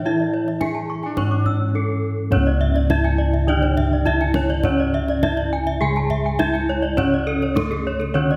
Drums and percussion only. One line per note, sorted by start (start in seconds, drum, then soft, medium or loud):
0.20 kendang slap soft
0.48 kendang slap soft
0.61 kendang high soft
0.61 kendang low soft
0.75 kendang slap soft
1.03 kendang slap soft
1.17 kendang high soft
1.17 kendang low soft
1.31 kendang slap soft
1.46 kendang low soft
2.32 kendang low medium
2.46 kendang slap soft
2.76 kendang slap soft
2.90 kendang high medium
2.90 kendang low soft
3.04 kendang slap soft
3.34 kendang slap soft
3.62 kendang slap soft
3.77 kendang low soft
4.06 kendang low soft
4.21 kendang slap soft
4.34 kendang high soft
4.49 kendang slap soft
4.63 kendang high soft
4.63 kendang low soft
4.78 kendang slap soft
5.08 kendang slap soft
5.23 kendang high soft
5.23 kendang low soft
5.37 kendang slap soft
5.67 kendang slap soft
5.96 kendang slap soft
6.10 kendang low soft
6.39 kendang high soft
6.39 kendang low soft
6.55 kendang slap soft
6.84 kendang slap soft
6.98 kendang low soft
7.42 kendang slap soft
7.57 kendang high soft
7.57 kendang low soft
7.72 kendang slap soft
8.01 kendang slap soft
8.31 kendang slap soft